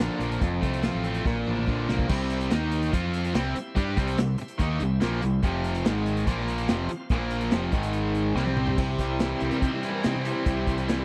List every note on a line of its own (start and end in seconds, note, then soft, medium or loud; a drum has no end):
0.00 0.19 A#2 medium
0.00 0.42 A#2 medium
0.00 0.20 D3 medium
0.00 0.42 D3 medium
0.00 0.18 F3 medium
0.00 0.20 F3 medium
0.00 0.20 A#3 medium
0.00 0.42 A#3 medium
0.00 0.17 D4 medium
0.00 0.42 D4 medium
0.00 0.41 F4 medium
0.00 0.16 A#4 medium
0.00 snare loud
0.18 0.37 A#1 medium
0.18 0.41 F3 medium
0.18 0.40 F3 soft
0.18 0.42 A#3 medium
0.18 0.41 D4 soft
0.18 0.40 A#4 medium
0.18 closed hi-hat medium
0.32 closed hi-hat medium
0.40 0.59 F1 medium
0.40 1.25 F2 medium
0.40 0.62 F3 medium
0.40 0.63 C4 medium
0.40 0.63 F4 medium
0.40 0.61 A4 medium
0.40 kick loud
0.40 closed hi-hat medium
0.61 0.88 C2 medium
0.61 1.25 A3 medium
0.61 1.25 C4 medium
0.61 0.82 F4 medium
0.61 0.83 A4 medium
0.61 kick medium
0.61 closed hi-hat medium
0.67 0.82 C4 soft
0.73 closed hi-hat medium
0.82 1.04 F3 medium
0.82 1.25 F3 medium
0.82 1.04 C4 medium
0.82 1.03 F4 medium
0.82 1.26 F4 medium
0.82 1.01 A4 loud
0.82 snare medium
0.82 closed hi-hat medium
0.95 1.20 A1 medium
1.02 1.25 A3 medium
1.02 1.25 C4 medium
1.02 1.24 C4 soft
1.02 1.25 F4 soft
1.02 1.24 A4 medium
1.02 closed hi-hat medium
1.14 closed hi-hat medium
1.23 1.43 A#1 medium
1.23 1.66 A#2 medium
1.23 1.45 F3 medium
1.23 1.45 A#3 medium
1.23 1.45 D4 medium
1.23 1.43 A#4 medium
1.23 kick loud
1.23 snare soft
1.36 high tom medium
1.44 1.66 A1 medium
1.44 1.87 F3 medium
1.44 1.67 A#3 soft
1.44 1.67 D4 medium
1.44 2.10 D4 medium
1.44 1.66 A#4 medium
1.48 1.66 F3 soft
1.57 mid tom medium
1.66 1.87 A#1 medium
1.66 1.88 A#2 medium
1.66 2.08 A#2 medium
1.66 1.88 D3 medium
1.66 2.09 D3 medium
1.66 1.88 F3 medium
1.66 1.89 A#3 medium
1.66 1.88 D4 medium
1.66 1.87 A#4 medium
1.66 kick medium
1.88 2.08 C2 medium
1.88 2.09 F3 medium
1.88 2.11 F3 soft
1.88 2.10 A#3 medium
1.88 2.10 A#3 soft
1.88 2.10 D4 medium
1.88 2.09 A#4 soft
1.88 snare medium
1.99 kick medium
2.08 2.49 C2 medium
2.08 2.50 C3 medium
2.08 2.51 G3 loud
2.08 2.51 C4 loud
2.08 2.52 E4 medium
2.08 2.51 G4 medium
2.08 2.51 C5 medium
2.08 2.51 E5 medium
2.08 kick loud
2.08 crash loud
2.30 closed hi-hat medium
2.40 closed hi-hat medium
2.51 2.91 D#2 medium
2.51 2.92 D#3 medium
2.51 2.93 A#3 medium
2.51 2.94 A#3 medium
2.51 2.93 D#4 loud
2.51 2.94 D#4 medium
2.51 2.94 A#4 medium
2.51 2.94 D#5 medium
2.51 snare loud
2.51 closed hi-hat medium
2.72 closed hi-hat medium
2.82 closed hi-hat medium
2.93 3.33 F2 medium
2.93 3.34 F3 medium
2.93 3.35 C4 medium
2.93 3.35 C4 loud
2.93 3.35 F4 medium
2.93 3.35 F4 loud
2.93 3.34 C5 medium
2.93 3.35 F5 medium
2.93 kick medium
2.93 closed hi-hat medium
3.13 closed hi-hat medium
3.24 closed hi-hat medium
3.34 3.55 C2 medium
3.34 3.55 C3 medium
3.34 3.56 G3 medium
3.34 3.56 C4 loud
3.34 5.42 E4 medium
3.34 5.42 G4 medium
3.34 5.42 C5 medium
3.34 5.42 E5 medium
3.34 snare loud
3.34 closed hi-hat medium
3.56 muted distorted electric guitar stroke medium
3.56 muted picked electric bass stroke soft
3.56 muted overdriven electric guitar stroke soft
3.56 closed hi-hat medium
3.76 3.96 G2 medium
3.76 3.97 G3 medium
3.76 3.98 D4 loud
3.76 3.98 G4 loud
3.76 kick loud
3.76 closed hi-hat medium
3.97 4.17 C2 loud
3.97 4.18 C3 loud
3.97 4.18 G3 medium
3.97 4.19 C4 loud
3.97 kick loud
3.97 closed hi-hat medium
4.07 closed hi-hat medium
4.18 4.37 C2 medium
4.18 4.36 C3 medium
4.18 4.36 G3 medium
4.18 snare loud
4.18 closed hi-hat medium
4.38 muted picked electric bass stroke soft
4.38 muted overdriven electric guitar stroke medium
4.38 muted distorted electric guitar stroke medium
4.38 closed hi-hat medium
4.48 closed hi-hat medium
4.58 4.80 D#2 medium
4.58 4.79 D#3 loud
4.58 4.80 A#3 loud
4.58 4.81 D#4 loud
4.58 kick loud
4.58 closed hi-hat medium
4.80 5.01 C2 medium
4.80 4.97 C3 medium
4.80 4.98 G3 medium
4.80 closed hi-hat medium
5.00 5.22 A#1 medium
5.00 5.21 A#2 medium
5.00 5.22 F3 medium
5.00 5.22 A#3 medium
5.00 snare loud
5.00 closed hi-hat medium
5.21 5.43 C2 medium
5.21 5.39 C3 soft
5.21 5.39 G3 medium
5.21 closed hi-hat medium
5.43 5.83 F1 medium
5.43 5.85 F2 medium
5.43 5.85 C3 loud
5.43 5.85 F3 loud
5.43 5.85 C4 medium
5.43 5.85 F4 medium
5.43 5.85 C5 medium
5.43 5.85 F5 medium
5.43 kick loud
5.43 closed hi-hat medium
5.64 closed hi-hat medium
5.75 closed hi-hat medium
5.85 6.25 G#1 medium
5.85 6.27 G#2 medium
5.85 6.26 D#3 medium
5.85 6.27 G#3 medium
5.85 6.28 G#3 medium
5.85 6.28 D#4 medium
5.85 6.27 G#4 medium
5.85 6.27 D#5 medium
5.85 snare loud
5.85 closed hi-hat medium
6.06 closed hi-hat medium
6.17 closed hi-hat medium
6.26 6.66 A#1 medium
6.26 6.68 A#2 loud
6.26 6.69 F3 loud
6.26 6.69 A#3 loud
6.26 6.69 A#3 medium
6.26 6.68 F4 medium
6.26 6.70 A#4 medium
6.26 6.67 F5 medium
6.26 kick medium
6.26 closed hi-hat medium
6.38 snare soft
6.48 closed hi-hat medium
6.58 closed hi-hat medium
6.68 6.89 F1 medium
6.68 6.89 F2 medium
6.68 6.90 C3 medium
6.68 6.90 F3 medium
6.68 7.10 C4 medium
6.68 7.11 F4 medium
6.68 7.11 C5 medium
6.68 7.10 F5 medium
6.68 snare loud
6.68 closed hi-hat medium
6.89 muted distorted electric guitar stroke medium
6.89 muted overdriven electric guitar stroke soft
6.89 closed hi-hat medium
7.10 7.50 A#1 medium
7.10 7.52 A#2 medium
7.10 7.53 F3 medium
7.10 7.53 A#3 loud
7.10 7.53 A#3 medium
7.10 7.53 F4 medium
7.10 7.53 A#4 medium
7.10 7.54 F5 medium
7.10 kick loud
7.10 closed hi-hat medium
7.30 closed hi-hat medium
7.41 closed hi-hat medium
7.51 7.72 F1 medium
7.51 7.73 F2 medium
7.51 7.74 C3 medium
7.51 7.74 F3 medium
7.51 snare loud
7.51 closed hi-hat medium
7.72 8.32 G#1 medium
7.72 8.36 G#2 medium
7.72 8.37 D#3 medium
7.72 8.36 G#3 medium
7.72 8.37 G#3 medium
7.72 8.36 D#4 medium
7.72 8.36 G#4 medium
7.72 8.36 D#5 medium
7.72 kick loud
7.72 closed hi-hat medium
7.83 closed hi-hat medium
7.93 closed hi-hat medium
8.15 closed hi-hat medium
8.35 8.75 C2 medium
8.35 8.78 C3 medium
8.35 8.78 G3 medium
8.35 8.78 C4 medium
8.35 8.79 C4 loud
8.35 8.78 G4 medium
8.35 8.78 C5 medium
8.35 snare medium
8.46 high tom medium
8.57 mid tom medium
8.67 floor tom medium
8.77 8.95 C2 medium
8.77 8.99 C3 medium
8.77 9.83 C3 medium
8.77 8.99 G3 medium
8.77 9.00 C4 medium
8.77 8.99 E4 medium
8.77 8.98 G4 medium
8.77 kick loud
8.77 crash medium
8.98 9.33 C2 medium
8.98 9.58 G3 medium
8.98 9.63 G3 medium
8.98 9.59 C4 medium
8.98 9.59 E4 medium
8.98 9.20 E4 medium
8.98 9.20 G4 medium
8.98 kick medium
8.98 closed hi-hat medium
9.02 9.19 C4 medium
9.19 9.41 C3 medium
9.19 9.83 E3 medium
9.19 9.41 G3 medium
9.19 9.41 C4 medium
9.19 9.40 E4 medium
9.19 9.83 E4 medium
9.19 9.38 G4 medium
9.19 snare loud
9.19 closed hi-hat medium
9.39 9.50 C2 medium
9.39 10.23 G3 medium
9.39 10.04 C4 medium
9.39 9.60 C4 soft
9.39 9.61 E4 soft
9.39 9.61 G4 medium
9.39 closed hi-hat medium
9.44 9.47 A4 medium
9.48 9.69 C3 medium
9.48 9.62 A#4 loud
9.48 closed hi-hat medium
9.60 9.82 G3 medium
9.60 9.81 G3 soft
9.60 9.83 C4 medium
9.60 10.02 C4 medium
9.60 9.77 C4 soft
9.60 9.83 E4 medium
9.60 9.81 E4 soft
9.60 9.81 G4 medium
9.60 kick medium
9.60 closed hi-hat medium
9.64 10.67 G3 medium
9.64 9.77 D#4 medium
9.78 9.91 C4 medium
9.78 10.03 G4 soft
9.83 10.85 E3 medium
9.83 10.02 C4 soft
9.83 10.03 E4 soft
9.83 10.87 E4 medium
9.83 closed hi-hat medium
9.89 9.91 A4 medium
9.89 10.05 A#4 medium
10.03 10.24 C3 medium
10.03 10.14 C3 medium
10.03 10.25 G3 medium
10.03 10.25 C4 medium
10.03 11.05 C4 medium
10.03 10.19 D#4 loud
10.03 10.25 E4 medium
10.03 10.24 G4 medium
10.03 snare loud
10.03 closed hi-hat medium
10.16 10.32 C3 medium
10.20 11.05 G3 medium
10.20 10.33 C4 medium
10.25 10.44 C3 medium
10.25 10.45 C4 soft
10.25 10.45 E4 medium
10.25 10.46 G4 soft
10.25 closed hi-hat medium
10.31 10.33 B3 medium
10.35 10.45 C4 loud
10.45 10.64 C2 medium
10.45 10.67 C3 medium
10.45 11.05 C3 medium
10.45 11.05 G3 medium
10.45 10.67 G3 medium
10.45 10.67 C4 medium
10.45 11.05 C4 soft
10.45 10.67 E4 medium
10.45 11.05 E4 medium
10.45 10.66 G4 medium
10.45 kick loud
10.45 closed hi-hat medium
10.67 11.02 C2 medium
10.67 11.05 G3 medium
10.67 10.89 C4 soft
10.67 10.89 E4 medium
10.67 10.88 G4 medium
10.67 kick medium
10.67 closed hi-hat medium
10.78 closed hi-hat medium
10.87 11.05 C3 medium
10.87 11.05 E3 medium
10.87 11.05 G3 medium
10.87 11.05 C4 medium
10.87 11.05 E4 medium
10.87 11.05 E4 loud
10.87 11.05 G4 medium
10.87 snare loud
10.87 closed hi-hat medium